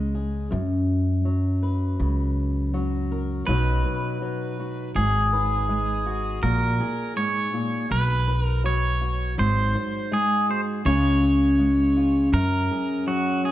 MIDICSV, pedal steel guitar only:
0, 0, Header, 1, 2, 480
1, 0, Start_track
1, 0, Key_signature, 6, "major"
1, 0, Tempo, 738007
1, 332, Time_signature, 4, 2, 24, 8
1, 8791, End_track
2, 0, Start_track
2, 0, Title_t, "Pedal steel guitar"
2, 0, Program_c, 0, 26
2, 2254, Note_on_c, 0, 71, 86
2, 3191, Note_off_c, 0, 71, 0
2, 3225, Note_on_c, 0, 68, 84
2, 4156, Note_off_c, 0, 68, 0
2, 4180, Note_on_c, 0, 70, 91
2, 4660, Note_off_c, 0, 70, 0
2, 4662, Note_on_c, 0, 73, 89
2, 5146, Note_off_c, 0, 73, 0
2, 5148, Note_on_c, 0, 71, 99
2, 5487, Note_off_c, 0, 71, 0
2, 5487, Note_on_c, 0, 70, 99
2, 5628, Note_off_c, 0, 70, 0
2, 5631, Note_on_c, 0, 73, 97
2, 6106, Note_off_c, 0, 73, 0
2, 6109, Note_on_c, 0, 72, 96
2, 6591, Note_on_c, 0, 68, 79
2, 6597, Note_off_c, 0, 72, 0
2, 6831, Note_off_c, 0, 68, 0
2, 6833, Note_on_c, 0, 72, 85
2, 6896, Note_off_c, 0, 72, 0
2, 7063, Note_on_c, 0, 73, 99
2, 8020, Note_off_c, 0, 73, 0
2, 8023, Note_on_c, 0, 70, 89
2, 8505, Note_on_c, 0, 66, 73
2, 8514, Note_off_c, 0, 70, 0
2, 8747, Note_off_c, 0, 66, 0
2, 8749, Note_on_c, 0, 68, 76
2, 8791, Note_off_c, 0, 68, 0
2, 8791, End_track
0, 0, End_of_file